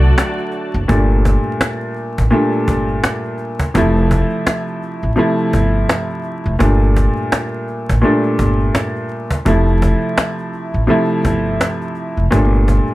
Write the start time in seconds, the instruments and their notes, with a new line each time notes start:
Already playing: upright bass C2, grand piano D3 F#3 A3 F#4, string section F#4 A4 D5 A5
0.03 cajon slap
0.18 cajon slap
0.39 cajon slap
0.52 cajon slap
0.74 upright bass F#1, cajon slap
0.88 upright bass G1, grand piano A#2 G3 A3 D4, cajon bass
1.11 cajon slap
1.25 cajon bass
1.44 cajon slap
1.61 cajon slap
1.81 cajon slap
1.96 cajon slap
2.18 upright bass A1, cajon bass
2.31 grand piano A#2 G3 A3 D4, cajon slap
2.53 cajon slap
2.68 upright bass G1, cajon bass
2.89 cajon slap
3.04 cajon slap
3.24 cajon slap
3.38 cajon slap
3.59 cajon bass
3.74 upright bass F1, grand piano C3 F3 A3 E4, cajon bass
3.97 cajon slap
4.11 cajon bass
4.30 cajon slap
4.47 cajon slap
4.67 cajon slap
4.82 cajon slap
5.02 upright bass A1, cajon slap
5.16 grand piano C3 F3 A3 E4, cajon slap
5.39 cajon slap
5.53 upright bass G1, cajon bass
5.75 cajon slap
5.89 cajon slap
6.10 cajon slap
6.24 cajon slap
6.46 upright bass F1, cajon slap
6.59 upright bass G1, grand piano A#2 G3 A3 D4, cajon bass
6.82 cajon slap
6.96 cajon bass
7.16 cajon slap
7.32 cajon slap
7.53 cajon slap
7.68 cajon slap
7.89 upright bass A1, cajon bass
8.02 grand piano A#2 G3 A3 D4, cajon slap
8.24 cajon slap
8.39 upright bass G1, cajon bass
8.60 cajon slap
8.75 cajon slap
8.95 cajon slap
9.09 cajon slap
9.31 cajon bass
9.46 upright bass F1, grand piano C3 F3 A3 E4, cajon bass
9.67 cajon slap
9.82 cajon bass
10.01 cajon slap
10.18 cajon slap
10.38 cajon slap
10.53 cajon slap
10.73 upright bass A1, cajon slap
10.87 grand piano C3 F3 A3 E4, cajon slap
11.09 cajon slap
11.25 upright bass G1, cajon bass
11.46 cajon slap
11.61 cajon slap
11.82 cajon slap
11.95 cajon slap
12.17 upright bass F1, cajon slap
12.31 upright bass G1, grand piano A#2 G3 A3 D4, cajon bass
12.54 cajon slap
12.68 cajon bass
12.87 cajon slap